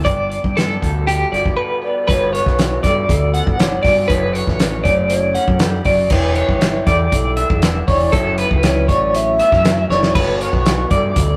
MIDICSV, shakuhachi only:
0, 0, Header, 1, 2, 480
1, 0, Start_track
1, 0, Tempo, 504626
1, 55, Time_signature, 4, 2, 24, 8
1, 10811, End_track
2, 0, Start_track
2, 0, Title_t, "Shakuhachi"
2, 0, Program_c, 0, 77
2, 1739, Note_on_c, 0, 74, 91
2, 1980, Note_off_c, 0, 74, 0
2, 1980, Note_on_c, 0, 74, 97
2, 2014, Note_on_c, 0, 73, 105
2, 2024, Note_off_c, 0, 74, 0
2, 2215, Note_on_c, 0, 71, 97
2, 2229, Note_off_c, 0, 73, 0
2, 2686, Note_off_c, 0, 71, 0
2, 2686, Note_on_c, 0, 71, 74
2, 2721, Note_on_c, 0, 69, 80
2, 2730, Note_off_c, 0, 71, 0
2, 2922, Note_off_c, 0, 69, 0
2, 2928, Note_on_c, 0, 69, 87
2, 3401, Note_on_c, 0, 73, 96
2, 3415, Note_off_c, 0, 69, 0
2, 3635, Note_on_c, 0, 74, 90
2, 3650, Note_off_c, 0, 73, 0
2, 3882, Note_on_c, 0, 73, 95
2, 3896, Note_off_c, 0, 74, 0
2, 4120, Note_on_c, 0, 71, 95
2, 4134, Note_off_c, 0, 73, 0
2, 4604, Note_on_c, 0, 73, 84
2, 4619, Note_off_c, 0, 71, 0
2, 4821, Note_off_c, 0, 73, 0
2, 4827, Note_on_c, 0, 73, 99
2, 5315, Note_on_c, 0, 71, 77
2, 5329, Note_off_c, 0, 73, 0
2, 5346, Note_on_c, 0, 69, 84
2, 5355, Note_off_c, 0, 71, 0
2, 5549, Note_off_c, 0, 69, 0
2, 5555, Note_on_c, 0, 74, 87
2, 5797, Note_on_c, 0, 73, 99
2, 5811, Note_off_c, 0, 74, 0
2, 6033, Note_on_c, 0, 71, 88
2, 6047, Note_off_c, 0, 73, 0
2, 6536, Note_on_c, 0, 69, 78
2, 6551, Note_off_c, 0, 71, 0
2, 6769, Note_off_c, 0, 69, 0
2, 6775, Note_on_c, 0, 69, 86
2, 7271, Note_on_c, 0, 71, 82
2, 7285, Note_off_c, 0, 69, 0
2, 7491, Note_off_c, 0, 71, 0
2, 7496, Note_on_c, 0, 74, 85
2, 7750, Note_on_c, 0, 73, 84
2, 7764, Note_off_c, 0, 74, 0
2, 7981, Note_off_c, 0, 73, 0
2, 8213, Note_on_c, 0, 73, 95
2, 8457, Note_on_c, 0, 74, 95
2, 8471, Note_off_c, 0, 73, 0
2, 8701, Note_on_c, 0, 76, 113
2, 8716, Note_off_c, 0, 74, 0
2, 9408, Note_off_c, 0, 76, 0
2, 9414, Note_on_c, 0, 74, 87
2, 9637, Note_off_c, 0, 74, 0
2, 9655, Note_on_c, 0, 73, 98
2, 9905, Note_on_c, 0, 71, 96
2, 9919, Note_off_c, 0, 73, 0
2, 10372, Note_off_c, 0, 71, 0
2, 10372, Note_on_c, 0, 71, 77
2, 10415, Note_on_c, 0, 69, 84
2, 10424, Note_off_c, 0, 71, 0
2, 10597, Note_off_c, 0, 69, 0
2, 10603, Note_on_c, 0, 71, 76
2, 10647, Note_on_c, 0, 69, 82
2, 10657, Note_off_c, 0, 71, 0
2, 10811, Note_off_c, 0, 69, 0
2, 10811, End_track
0, 0, End_of_file